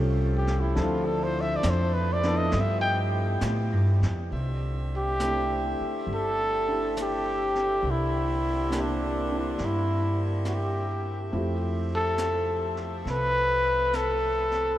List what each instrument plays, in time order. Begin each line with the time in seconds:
Already playing: upright bass C2, saxophone section F3 A3 F4 G4, grand piano G3 C4 C#4 F4 A4
0.38 trumpet G4
0.47 snare
0.61 trumpet E4
0.75 upright bass D2, grand piano F3 C4 D4 E4 A4, saxophone section A3 D4 A4, brush sweep, snare
0.83 trumpet F4
1.05 trumpet A4
1.24 trumpet C5
1.41 trumpet E5
1.57 trumpet D5
1.63 upright bass F2, snare, hi-hat pedal
1.70 trumpet C5
1.94 trumpet B4
2.13 trumpet D5
2.23 grand piano F3 B3 D4 E4 A4, snare
2.38 trumpet D#5
2.51 upright bass G2, saxophone section B3 E4 G4, brush sweep, snare
2.60 trumpet E5
2.81 trumpet G5
3.41 upright bass A2, snare, hi-hat pedal
3.72 upright bass G2
4.01 upright bass F2, snare
4.31 upright bass C2, saxophone section D3 A3 C4 G4 E5, brush sweep
4.97 trumpet G4
5.20 grand piano A3 C4 D4 E4 G4, snare, hi-hat pedal
5.80 muted upright bass stroke
6.07 upright bass G1, brush sweep
6.15 trumpet A4
6.68 grand piano D4 E4 G4 A4
6.97 snare, hi-hat pedal
7.03 trumpet G4
7.55 snare
7.82 upright bass C2, saxophone section A#3, brush sweep
7.91 trumpet E4
8.69 grand piano A#3 C4 D4 E4, snare, hi-hat pedal
8.74 grand piano G4
8.81 trumpet D4
9.30 grand piano C4 D4 E4
9.39 trumpet D4
9.58 upright bass G2, brush sweep, snare
9.66 trumpet E4
10.45 trumpet F#4, snare, hi-hat pedal
10.55 trumpet G4
11.28 saxophone section F3 A3 C4, grand piano C4
11.32 upright bass F2, grand piano A3 E4 F4 G4, brush sweep
11.96 trumpet A4
12.18 snare, hi-hat pedal
12.77 snare
13.05 upright bass C2, saxophone section A4, brush sweep, snare
13.11 trumpet B4
13.93 trumpet A4, snare, hi-hat pedal
14.51 snare